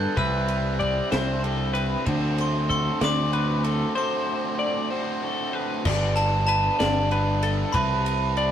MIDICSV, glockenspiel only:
0, 0, Header, 1, 2, 480
1, 0, Start_track
1, 0, Tempo, 630252
1, 130, Time_signature, 6, 3, 24, 8
1, 6485, End_track
2, 0, Start_track
2, 0, Title_t, "Glockenspiel"
2, 0, Program_c, 0, 9
2, 0, Note_on_c, 0, 90, 96
2, 138, Note_off_c, 0, 90, 0
2, 140, Note_on_c, 0, 88, 72
2, 1066, Note_off_c, 0, 88, 0
2, 1835, Note_on_c, 0, 84, 103
2, 2053, Note_off_c, 0, 84, 0
2, 2062, Note_on_c, 0, 84, 91
2, 2305, Note_off_c, 0, 84, 0
2, 2316, Note_on_c, 0, 86, 102
2, 3029, Note_on_c, 0, 84, 86
2, 3047, Note_off_c, 0, 86, 0
2, 3952, Note_off_c, 0, 84, 0
2, 4689, Note_on_c, 0, 81, 103
2, 4798, Note_off_c, 0, 81, 0
2, 4924, Note_on_c, 0, 81, 97
2, 5618, Note_off_c, 0, 81, 0
2, 5884, Note_on_c, 0, 83, 110
2, 6338, Note_off_c, 0, 83, 0
2, 6485, End_track
0, 0, End_of_file